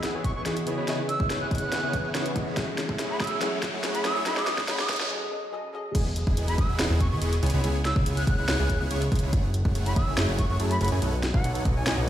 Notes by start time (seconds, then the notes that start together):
Already playing: E3 G#4, riser
0.03 B3 E4 G#4 D#5 F#5, snare, closed hi-hat
0.13 E3 B3 E4 F#4 G#4 C#5 D#5 G#5
0.24 C#6, kick, closed hi-hat
0.35 B3 E4 G#4 D#5 G#5 C#6
0.45 E3 B3 E4 F#4 G#4 D#5 F#5 C#6, snare, closed hi-hat
0.57 closed hi-hat
0.66 C#3 B3 C#4 E4 G#4 B4 C#5 D#5 G#5, closed hi-hat
0.78 B3 E4 G#4 C#5 B5
0.87 C#3 B3 C#4 E4 G#4 B4 C#5 D#5 G#5, snare, closed hi-hat
1.09 E6, closed hi-hat
1.19 C#3 B3 C#4 E4 G#4 B4 C#5 D#5 G#5, kick
1.30 B3 E4 G#4 C#5 G#5, snare, closed hi-hat
1.41 F#6
1.50 C#3 B3 C#4 E4 G#4 B4 C#5 D#5 F#5 F#6, kick, closed hi-hat
1.55 closed hi-hat
1.58 B3 E4 G#4 C#5 B5, closed hi-hat
1.72 B3 E4 G#4 C#5 F#5, snare, closed hi-hat
1.82 C#3 B3 C#4 E4 G#4 B4 C#5 G#5
1.93 kick, closed hi-hat
2.04 B3 E4 G#4 C#5 G#5
2.13 C#3 B3 C#4 E4 G#4 B4 C#5 F#5 C#6, snare, closed hi-hat
2.26 closed hi-hat
2.35 C#3 B3 C#4 E4 G#4 B4 C#5 D#5 G#5, kick, closed hi-hat
2.47 B3 E4 G#4 C#5 B5
2.56 F#3 A3 C#4 E4 G#4 A4 C#5 E5 F#5, kick, snare, closed hi-hat
2.78 snare, closed hi-hat
2.88 F#3 A3 C#4 E4 G#4 A4 C#5 E5 F#5, kick
2.99 A3 E4 G#4 C#5 F#5, snare, closed hi-hat
3.10 B5
3.19 F#3 A3 C#4 E4 G#4 A4 C#5 E5 E6, kick, snare, closed hi-hat
3.24 closed hi-hat
3.27 A3 E4 G#4 C#5 G#5, closed hi-hat
3.40 F#3 A3 C#4 E4 G#4 A4 C#5 E5 F#5, snare, closed hi-hat
3.62 kick, snare, closed hi-hat
3.73 F#3 A3 C#4 E4 G#4 A4 C#5 E5 F#5
3.84 A3 E4 G#4 C#5 F#5, snare, closed hi-hat
3.95 B5, closed hi-hat
4.04 F#3 A3 C#4 E4 G#4 A4 C#5 E5 E6, snare, closed hi-hat
4.16 A3 E4 G#4 C#5 G#5
4.25 F#3 A3 C#4 D#4 G#4 A4 C#5 D#5 F#5 B5, snare, closed hi-hat
4.37 D#6, snare
4.47 snare, closed hi-hat
4.57 F#3 A3 C#4 D#4 G#4 A4 C#5 D#5 F#5, kick, snare
4.67 F#3 A3 C#4 D#4 G#4 A4 C#5 D#5 F#5 B5, snare, closed hi-hat
4.79 D#6, snare
4.89 kick, snare, closed hi-hat
4.93 closed hi-hat
4.96 F#3 A3 C#4 D#4 G#4 C#5 F#5, closed hi-hat
5.00 G#4 A4 D#5, snare
5.09 F#3 C#4 G#4 A4 D#5
5.30 F#3 C#4 G#4 A4 D#5
5.52 F#3 C#4 G#4 A4 D#5
5.73 F#3 C#4 G#4 A4 D#5
5.95 E1 B3 E4 G#4 D#5 G#5, kick, closed hi-hat, crash
6.16 closed hi-hat
6.27 E1 B3 E4 G#4 D#5 G#5, kick
6.37 E1 B3 E4 G#4 D#5 G#5, closed hi-hat
6.48 B5, closed hi-hat
6.58 E1 B3 E4 G#4 D#5 F#5 E6, kick, closed hi-hat
6.69 E1 B3 E4 G#4 D#5 B5
6.79 E1 B3 E4 G#4 D#5 F#5, snare, closed hi-hat
6.90 E1 B3 E4 G#4 D#5 G#5
7.00 C#6, kick, closed hi-hat
7.11 E2 B3 E4 G#4 D#5 G#5 C#6
7.22 E1 B3 E4 G#4 D#5 C#6, closed hi-hat
7.33 closed hi-hat
7.43 C#2 B3 E4 G#4 C#5 G#5, closed hi-hat
7.46 closed hi-hat
7.50 C#2 B3 E4 G#4 C#5 B5, closed hi-hat
7.64 C#2 B3 E4 G#4 C#5 G#5, closed hi-hat
7.85 E6, snare, closed hi-hat
7.96 C#2 B3 E4 G#4 C#5 G#5, kick
8.06 C#2 B3 E4 G#4 C#5 G#5, closed hi-hat
8.17 F#6, closed hi-hat
8.27 C#2 B3 E4 G#4 C#5 F#5 F#6, kick, closed hi-hat
8.38 C#2 B3 E4 G#4 C#5 B5
8.48 C#2 B3 E4 G#4 C#5 F#5, snare, closed hi-hat
8.59 C#2 B3 E4 G#4 C#5 G#5
8.70 kick, closed hi-hat
8.81 C#2 B3 E4 G#4 C#5 G#5
8.91 C#2 B3 E4 G#4 C#5 C#6, closed hi-hat
9.02 closed hi-hat
9.12 C#2 B3 E4 G#4 C#5 G#5, kick, closed hi-hat
9.15 closed hi-hat
9.19 B3 E4 G#4 C#5 B5, closed hi-hat
9.23 C#2
9.33 F#1 A3 E4 G#4 C#5 F#5, kick, closed hi-hat
9.54 closed hi-hat
9.65 F#1 A3 E4 G#4 C#5 F#5, kick
9.75 F#1 A3 E4 G#4 C#5 F#5, closed hi-hat
9.86 B5, closed hi-hat
9.96 F#1 A3 E4 G#4 C#5 E5 E6, kick, closed hi-hat
10.07 F#1 A3 E4 G#4 C#5 G#5
10.17 F#1 A3 E4 G#4 C#5 E5, snare, closed hi-hat
10.28 F#1 A3 E4 G#4 C#5 F#5
10.39 C#6, kick, closed hi-hat
10.50 F#1 A3 E4 G#4 C#5 F#5 C#6
10.60 F#2 A3 E4 G#4 C#5 A5, closed hi-hat
10.71 B5, closed hi-hat
10.81 F#1 A3 E4 G#4 C#5 F#5 B5, closed hi-hat
10.85 closed hi-hat
10.88 A3 E4 G#4 C#5 G#5, closed hi-hat
10.92 F#2
11.02 B1 B3 D#4 A4 C#5 F#5, closed hi-hat
11.23 snare, closed hi-hat
11.34 B1 B3 D#4 A4 C#5 F#5, kick
11.44 B1 B3 D#4 A4 C#5 F#5, closed hi-hat
11.55 closed hi-hat
11.65 B1 B3 D#4 A4 C#5 D#5, kick, closed hi-hat
11.76 B1 B3 D#4 A4 C#5 G#5
11.86 B1 B3 D#4 A4 C#5 D#5 G#5, snare, closed hi-hat
11.97 B1 B3 D#4 A4 C#5 F#5